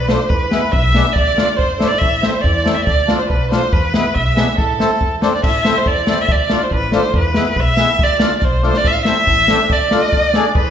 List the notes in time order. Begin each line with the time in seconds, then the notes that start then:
Already playing: B1
0.08 A3 D4 F4 C5, snare
0.29 E2 B4, kick
0.51 G#3 B3 E4, snare
0.72 B1 E5, kick
0.94 G#3 B3 D4, snare
1.13 D2 D5, kick
1.37 A3 D4 F4, snare
1.57 F1 C5, kick, snare
1.77 G#1 A3 D4 E4 C5, snare
1.88 D5
1.98 A1 E5, kick
2.22 A3 C4 E4, snare
2.30 C5
2.34 C5
2.41 E2 D5, kick
2.65 A3 C4 E4, snare
2.74 E5
2.85 D2 D5, kick
3.07 A3 D4 F4, snare
3.18 C5
3.29 B1 B4, kick
3.51 A3 D4 F4 C5, snare
3.66 C5
3.72 E2 B4, kick
3.94 G#3 B3 E4, snare
4.14 B1 E5, kick
4.36 G#3 B3 D4, snare
4.48 snare
4.58 A1 A4, kick
4.79 A3 C4 E4, snare
5.01 E2, kick
5.22 A3 C4 D4 C5, snare
5.35 D5
5.43 A1 E5, kick, crash
5.65 A3 C4 E4, snare
5.77 C5
5.86 E2 D5, kick
6.07 A3 C4 E4, snare
6.21 E5
6.29 D2 D5, kick
6.50 A3 D4 F4, snare
6.63 C5
6.71 A1 B4, kick
6.92 A3 D4 F4 C5, snare
7.02 snare
7.14 E2 B4, kick
7.34 G#3 B3 E4, snare
7.56 B1 E5, kick
7.77 G#3 B3 E4, snare
7.88 snare
7.99 D2, kick
8.03 D5
8.20 A3 D4 F4, snare
8.39 B1 D5, kick, snare
8.44 C5
8.63 A3 D4 F4, snare
8.67 C5
8.74 snare
8.78 D5
8.84 A1 E5, kick
8.92 F5
9.00 E5
9.05 A3 C4 E4, snare
9.27 A1, kick, snare
9.48 A3 C4 D4, snare
9.70 D2 D5, kick
9.91 A3 D4 F4, snare
10.12 D2, kick, snare
10.34 A3 D4 G#4, snare
10.55 E2 B4, kick
10.64 C5